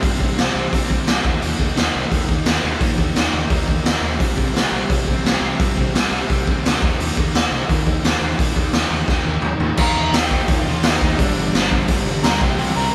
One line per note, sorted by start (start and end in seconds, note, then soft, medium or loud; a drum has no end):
0.02 0.14 G2 medium
0.02 0.20 C3 loud
0.02 0.22 G3 medium
0.02 0.22 C4 medium
0.02 kick loud
0.02 open hi-hat medium
0.20 0.31 C2 medium
0.20 0.37 C3 medium
0.20 0.39 G3 medium
0.20 0.38 C4 medium
0.20 kick medium
0.38 0.49 C2 medium
0.38 0.54 C3 medium
0.38 0.56 G3 loud
0.38 0.56 C4 medium
0.38 snare loud
0.38 open hi-hat medium
0.55 0.66 C2 medium
0.55 0.72 C3 medium
0.55 0.73 G3 medium
0.55 0.73 C4 medium
0.73 0.83 C2 medium
0.73 0.90 C3 medium
0.73 0.91 G3 loud
0.73 0.90 C4 loud
0.73 kick loud
0.73 open hi-hat medium
0.90 1.01 C2 medium
0.90 1.06 C3 medium
0.90 1.07 G3 medium
0.90 1.07 C4 loud
0.90 kick medium
1.07 1.19 C2 medium
1.07 1.23 C3 medium
1.07 1.26 G3 medium
1.07 1.24 C4 loud
1.07 snare loud
1.07 open hi-hat medium
1.25 1.36 D#2 medium
1.25 1.41 D#3 loud
1.25 1.42 A#3 medium
1.25 1.42 D#4 loud
1.25 kick loud
1.42 1.53 D#2 medium
1.42 1.59 D#3 medium
1.42 1.59 A#3 medium
1.42 1.60 D#4 medium
1.42 open hi-hat medium
1.59 1.70 D#2 medium
1.59 1.76 D#3 medium
1.59 1.76 A#3 medium
1.59 1.77 D#4 medium
1.59 kick medium
1.76 1.88 D#2 medium
1.76 1.93 D#3 medium
1.76 1.94 A#3 loud
1.76 1.94 D#4 medium
1.76 snare loud
1.76 open hi-hat medium
1.94 2.06 C2 medium
1.94 2.10 D#3 medium
1.94 2.10 A#3 medium
1.94 2.11 D#4 medium
2.11 2.22 D#2 medium
2.11 2.27 D#3 loud
2.11 2.27 A#3 loud
2.11 2.29 D#4 loud
2.11 kick loud
2.11 open hi-hat soft
2.28 2.40 D#2 medium
2.28 2.45 D#3 medium
2.28 2.45 A#3 medium
2.28 2.46 D#4 loud
2.28 kick medium
2.46 2.56 D#2 medium
2.46 2.61 D#3 medium
2.46 2.62 A#3 medium
2.46 2.63 D#4 loud
2.46 snare loud
2.46 open hi-hat medium
2.62 2.74 D#2 medium
2.62 2.80 D#3 medium
2.62 2.80 A#3 medium
2.62 2.81 D#4 medium
2.81 2.91 A#2 medium
2.81 2.96 D#3 medium
2.81 2.97 A#3 medium
2.81 2.98 D#4 loud
2.81 kick loud
2.81 open hi-hat medium
2.97 3.09 D#2 medium
2.97 3.13 D#3 medium
2.97 3.13 A#3 medium
2.97 3.15 D#4 loud
2.97 kick medium
3.14 3.27 D#2 medium
3.14 3.30 D#3 medium
3.14 3.31 A#3 medium
3.14 3.33 D#4 loud
3.14 snare loud
3.14 open hi-hat medium
3.32 3.44 D#2 medium
3.32 3.49 D#3 medium
3.32 3.50 A#3 medium
3.32 3.51 D#4 medium
3.50 3.61 D#2 medium
3.50 3.67 D#3 loud
3.50 3.67 A#3 loud
3.50 3.69 D#4 medium
3.50 kick loud
3.50 open hi-hat soft
3.68 3.79 D#2 medium
3.68 3.83 D#3 medium
3.68 3.83 A#3 medium
3.68 3.85 D#4 loud
3.68 kick medium
3.84 3.95 D#2 medium
3.84 4.01 D#3 medium
3.84 4.01 A#3 loud
3.84 4.02 D#4 loud
3.84 snare loud
3.84 open hi-hat medium
4.01 4.20 D#2 medium
4.01 4.18 D#3 medium
4.01 4.19 A#3 medium
4.01 4.19 D#4 medium
4.18 4.31 C2 medium
4.18 4.35 C3 medium
4.18 4.35 G3 medium
4.18 4.36 C4 loud
4.18 kick loud
4.18 open hi-hat medium
4.35 4.49 C2 medium
4.35 4.52 C3 medium
4.35 4.53 G3 medium
4.35 4.52 C4 medium
4.35 kick medium
4.52 4.64 C2 medium
4.52 4.71 C3 medium
4.52 4.72 G3 loud
4.52 4.71 C4 medium
4.52 snare loud
4.52 open hi-hat medium
4.72 4.83 A#1 medium
4.72 4.88 C3 medium
4.72 4.89 G3 medium
4.72 4.89 C4 medium
4.89 5.01 C2 medium
4.89 5.05 C3 medium
4.89 5.06 G3 loud
4.89 5.06 C4 loud
4.89 kick loud
4.89 open hi-hat medium
5.06 5.18 C2 medium
5.06 5.23 C3 medium
5.06 5.24 G3 medium
5.06 5.24 C4 medium
5.06 kick medium
5.24 5.35 C2 medium
5.24 5.40 C3 medium
5.24 5.41 G3 medium
5.24 5.41 C4 loud
5.24 snare loud
5.24 open hi-hat medium
5.41 5.52 C2 medium
5.41 5.58 C3 medium
5.41 5.59 G3 medium
5.41 5.59 C4 loud
5.59 5.70 G2 medium
5.59 5.75 C3 medium
5.59 5.77 G3 medium
5.59 5.77 C4 medium
5.59 kick loud
5.59 open hi-hat medium
5.76 5.88 C2 medium
5.76 5.93 C3 medium
5.76 5.95 G3 medium
5.76 5.94 C4 medium
5.76 kick medium
5.94 6.05 C2 medium
5.94 6.13 C3 medium
5.94 6.15 G3 loud
5.94 6.14 C4 medium
5.94 snare loud
5.94 open hi-hat medium
6.11 6.22 C2 medium
6.11 6.28 C3 medium
6.11 6.30 G3 medium
6.16 6.30 C4 medium
6.30 6.40 C2 medium
6.30 6.47 C3 loud
6.30 6.48 G3 loud
6.30 6.48 C4 loud
6.30 kick loud
6.30 open hi-hat soft
6.47 6.58 C2 medium
6.47 6.64 C3 medium
6.47 6.65 G3 medium
6.47 6.65 C4 medium
6.47 kick medium
6.63 6.74 D2 loud
6.63 6.81 C3 loud
6.63 6.83 G3 loud
6.63 6.82 C4 loud
6.63 snare loud
6.63 open hi-hat medium
6.82 6.93 D#2 medium
6.82 7.01 D#3 medium
6.82 7.01 A#3 loud
6.82 7.02 D#4 loud
6.82 kick loud
6.98 7.09 D#2 medium
6.98 7.19 D#3 medium
6.98 7.19 A#3 medium
6.98 open hi-hat medium
7.03 7.19 D#4 medium
7.17 7.28 D#2 medium
7.17 7.35 D#3 medium
7.17 7.36 A#3 medium
7.17 7.37 D#4 loud
7.17 kick medium
7.34 7.45 D#2 medium
7.34 7.54 D#3 medium
7.34 7.54 A#3 medium
7.34 7.54 D#4 loud
7.34 snare loud
7.34 open hi-hat medium
7.51 7.62 C2 medium
7.51 7.69 D#3 medium
7.51 7.70 A#3 medium
7.51 7.70 D#4 medium
7.69 7.80 D#2 medium
7.69 7.87 D#3 loud
7.69 7.88 A#3 loud
7.69 7.88 D#4 loud
7.69 kick loud
7.69 open hi-hat medium
7.87 7.97 D#2 medium
7.87 8.05 D#3 medium
7.87 8.05 A#3 medium
7.87 8.06 D#4 medium
7.87 kick medium
8.03 8.14 D#2 loud
8.03 8.22 D#3 loud
8.03 8.23 A#3 loud
8.03 8.23 D#4 loud
8.03 snare loud
8.03 open hi-hat medium
8.21 8.32 D#2 medium
8.21 8.39 D#3 medium
8.21 8.39 A#3 medium
8.21 8.39 D#4 medium
8.39 8.50 A#2 medium
8.39 8.57 D#3 medium
8.39 8.57 A#3 medium
8.39 8.58 D#4 medium
8.39 kick loud
8.39 open hi-hat medium
8.56 8.67 D#2 medium
8.56 8.74 D#3 medium
8.56 8.75 A#3 medium
8.56 8.75 D#4 medium
8.56 kick medium
8.73 8.84 D#2 medium
8.73 8.89 D#3 loud
8.73 8.90 A#3 loud
8.73 8.90 D#4 loud
8.73 snare loud
8.73 open hi-hat medium
8.90 9.01 D#2 medium
8.90 9.07 D#3 medium
8.90 9.07 A#3 medium
8.90 9.09 D#4 medium
9.08 9.19 D#2 medium
9.08 9.26 D#3 medium
9.08 9.27 A#3 medium
9.08 9.27 D#4 loud
9.08 kick loud
9.08 snare medium
9.25 9.37 D#2 medium
9.25 9.43 D#3 medium
9.25 9.44 A#3 medium
9.25 9.45 D#4 medium
9.42 9.53 D#2 medium
9.42 9.61 D#3 loud
9.42 9.61 A#3 medium
9.42 mid tom medium
9.46 9.62 D#4 loud
9.59 9.71 D#2 medium
9.59 9.78 D#3 medium
9.59 9.78 A#3 medium
9.59 9.79 D#4 medium
9.59 floor tom medium
9.77 9.91 D#2 medium
9.77 9.96 D#3 medium
9.77 9.97 A#3 loud
9.77 9.97 D#4 loud
9.77 10.11 A#4 medium
9.77 10.16 A#5 loud
9.77 kick loud
9.77 crash loud
9.94 10.08 D#2 medium
9.94 10.13 D#3 medium
9.94 10.15 A#3 medium
9.94 10.14 D#4 medium
10.12 10.39 D#2 medium
10.12 10.31 D#3 medium
10.12 10.31 A#3 loud
10.12 10.32 D#4 loud
10.12 10.47 G4 medium
10.12 10.51 G5 loud
10.12 snare loud
10.12 open hi-hat medium
10.30 10.50 D#3 medium
10.30 10.50 A#3 medium
10.30 10.82 D#4 loud
10.30 kick medium
10.34 10.51 D#4 medium
10.48 10.62 D#2 loud
10.48 10.66 D#3 medium
10.48 10.66 A#3 medium
10.48 10.98 F4 medium
10.48 10.93 F5 medium
10.48 kick loud
10.48 open hi-hat medium
10.52 10.67 D#4 loud
10.67 10.79 D#2 loud
10.67 10.82 D#3 loud
10.67 10.83 A#3 loud
10.67 10.83 D#4 loud
10.83 10.97 D#2 loud
10.83 11.01 D#3 medium
10.83 11.01 A#3 medium
10.83 11.02 D#4 medium
10.83 snare loud
10.83 open hi-hat medium
10.93 11.02 D#5 medium
11.01 11.14 D#2 medium
11.01 11.18 D#3 medium
11.01 11.18 A#3 medium
11.01 11.18 D#4 medium
11.01 11.18 D#5 medium
11.01 kick medium
11.18 11.32 G1 medium
11.18 11.36 G2 medium
11.18 11.36 D3 medium
11.18 11.38 G3 loud
11.18 11.68 D4 medium
11.18 11.67 D5 medium
11.18 kick loud
11.18 open hi-hat medium
11.37 11.50 G1 medium
11.37 11.53 G2 loud
11.37 11.54 D3 loud
11.37 11.55 G3 medium
11.54 11.80 G1 medium
11.54 11.71 G2 loud
11.54 11.71 D3 loud
11.54 11.73 G3 loud
11.54 snare loud
11.54 open hi-hat medium
11.71 11.89 G2 medium
11.71 11.90 D3 medium
11.71 11.90 G3 medium
11.71 kick medium
11.88 12.01 G1 medium
11.88 12.06 G2 medium
11.88 12.07 D3 medium
11.88 12.07 G3 loud
11.88 kick loud
11.88 open hi-hat medium
12.07 12.19 G1 medium
12.07 12.23 G2 medium
12.07 12.23 D3 loud
12.07 12.24 G3 loud
12.23 12.37 D2 loud
12.23 12.40 G2 loud
12.23 12.40 D3 medium
12.23 12.41 G3 loud
12.23 12.40 A#4 medium
12.23 12.41 A#5 loud
12.23 snare loud
12.23 open hi-hat medium
12.40 12.54 C2 medium
12.40 12.56 C3 loud
12.40 12.57 G3 loud
12.40 12.58 C4 loud
12.40 12.57 G4 medium
12.40 12.56 G5 medium
12.40 kick loud
12.57 12.71 C2 loud
12.57 12.75 C3 medium
12.57 12.75 G3 medium
12.57 12.75 C4 loud
12.57 12.74 G4 medium
12.57 12.75 G5 loud
12.57 open hi-hat medium
12.75 12.89 C2 loud
12.75 12.93 C3 loud
12.75 12.92 G3 loud
12.75 12.94 C4 medium
12.75 12.92 A#4 medium
12.75 12.94 A#5 loud